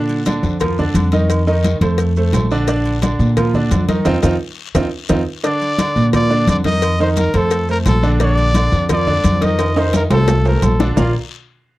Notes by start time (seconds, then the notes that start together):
Already playing: A#2 D3 D4 D5
0.09 high conga, low agogo, maracas
0.26 D3 D4 D5, cowbell, high conga, low agogo, short guiro, maracas
0.43 F2, high conga, short guiro, maracas
0.60 F3 F4 A#4, cowbell, high conga, low conga, low agogo, long guiro, maracas
0.78 D3 D4 D5, high conga, low conga, maracas
0.94 F2, cowbell, high conga, low agogo, short guiro, maracas
1.12 D#3 D#4 D#5, cowbell, high conga, short guiro, maracas
1.30 cowbell, high conga, low agogo, long guiro, maracas
1.47 D#3 D#4 D#5, high conga, maracas
1.64 cowbell, high conga, low agogo, short guiro, maracas
1.81 F2 A3 A4 C5, cowbell, low agogo, short guiro, maracas
1.98 cowbell, high conga, low agogo, long guiro, maracas
2.16 A3 A4 C5, high conga, maracas
2.33 A#1, cowbell, high conga, low timbale, low agogo, short guiro, maracas
2.50 D3 D4 D5, high conga, short guiro, maracas
2.68 D3 D4 D5, cowbell, high conga, long guiro, maracas
2.85 high conga, low agogo, maracas
3.02 D3 D4 D5, cowbell, high conga, low agogo, short guiro, maracas
3.19 A#2, high conga, short guiro, maracas
3.37 F3 F4 A#4, cowbell, high conga, low conga, low agogo, long guiro, maracas
3.54 D3 D4 D5, high conga, low conga, maracas
3.71 F2, cowbell, high conga, low timbale, low agogo, short guiro, maracas
3.88 D#3 D#4 D#5, cowbell, high conga, short guiro, maracas
4.05 F2 C4 D#4 F4, cowbell, low conga, high timbale, long guiro, maracas
4.22 F2 C4 D#4 F4, cowbell, low conga, high timbale, long guiro, maracas
4.75 F2 C4 D#4 F4, cowbell, low conga, high timbale, maracas
5.09 F2 C4 D#4 F4, cowbell, low conga, high timbale, long guiro, maracas
5.43 D3 D4 D5, cowbell, high conga, long guiro, maracas
5.61 high conga, low agogo, maracas
5.78 D3 D4 D5, cowbell, high conga, low agogo, short guiro, maracas
5.96 A#2, high conga, short guiro, maracas
6.13 F3 F4 A#4 D5, cowbell, high conga, low conga, low agogo, long guiro, maracas
6.30 D3 D4 D5, high conga, maracas
6.47 F2 D5, cowbell, high conga, low agogo, short guiro, maracas
6.64 D#3 D#4 D#5, cowbell, high conga, short guiro, maracas
6.82 cowbell, high conga, low agogo, long guiro, maracas
6.99 D#3 D#4 C5 D#5, high conga, maracas
7.17 A#4, cowbell, high conga, low agogo, short guiro, maracas
7.33 F2 A3 A4 C5, cowbell, low agogo, short guiro, maracas
7.51 cowbell, high conga, low agogo, long guiro, maracas
7.69 A3 A4 A#4 C5, high conga, maracas
7.86 A#1 A4, cowbell, high conga, low timbale, low agogo, short guiro, maracas
8.03 D3 D4 D5, high conga, short guiro, maracas
8.20 D3 D4 D5, cowbell, high conga, long guiro, maracas
8.38 high conga, low agogo, maracas
8.54 D3 D4 D5, cowbell, high conga, low agogo, short guiro, maracas
8.72 F2, high conga, short guiro, maracas
8.89 F3 F4 A#4 D5, cowbell, high conga, low conga, low agogo, long guiro, maracas
9.07 D3 D4 D5, high conga, low conga, maracas
9.24 F2, cowbell, high conga, low agogo, short guiro, maracas
9.41 D#3 D#4 D#5, cowbell, high conga, short guiro, maracas
9.59 cowbell, high conga, high timbale, low agogo, long guiro, maracas
9.76 D#3 D#4 C5 D#5, high conga, high timbale, maracas
9.93 A#4, cowbell, high conga, high timbale, low agogo, short guiro, maracas
10.10 C2 A3 A4 C5, cowbell, low timbale, low agogo, short guiro, maracas
10.28 cowbell, high bongo, high conga, low timbale, low agogo, long guiro, maracas
10.45 A3 A4 A#4 C5, high conga, low timbale, maracas
10.62 A#1 A4, cowbell, high conga, low timbale, low agogo, short guiro, maracas
10.80 D3 D4 D5, low bongo, high conga, low timbale, short guiro, maracas
10.96 A#1 A#3 F4 A#4 D5 F5 A#5, low bongo, low conga, low timbale, long guiro, maracas